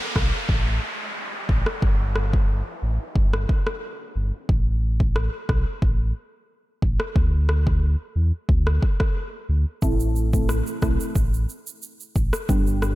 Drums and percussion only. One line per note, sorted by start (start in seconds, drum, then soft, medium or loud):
0.16 kick loud
0.16 cross-stick medium
0.49 kick medium
1.49 kick medium
1.66 cross-stick medium
1.82 kick loud
2.16 cross-stick medium
2.33 kick medium
3.16 kick loud
3.33 cross-stick medium
3.49 kick medium
3.67 cross-stick medium
4.49 kick loud
5.00 kick medium
5.16 cross-stick medium
5.49 kick loud
5.49 cross-stick medium
5.82 kick loud
6.82 kick medium
7.00 cross-stick medium
7.16 kick loud
7.49 cross-stick medium
7.67 kick medium
8.49 kick loud
8.67 cross-stick medium
8.82 kick medium
9.00 kick medium
9.00 cross-stick medium
9.82 kick loud
9.82 shaker medium
10.00 shaker medium
10.16 shaker medium
10.33 kick medium
10.33 shaker medium
10.49 cross-stick medium
10.49 shaker medium
10.67 shaker soft
10.82 kick loud
10.82 cross-stick medium
10.82 shaker soft
11.00 shaker medium
11.15 kick loud
11.15 shaker medium
11.34 shaker soft
11.49 shaker soft
11.67 shaker medium
11.82 shaker medium
12.00 shaker medium
12.16 kick medium
12.16 shaker medium
12.33 cross-stick medium
12.33 shaker medium
12.49 kick loud
12.49 shaker medium
12.67 shaker soft
12.82 cross-stick medium
12.82 shaker medium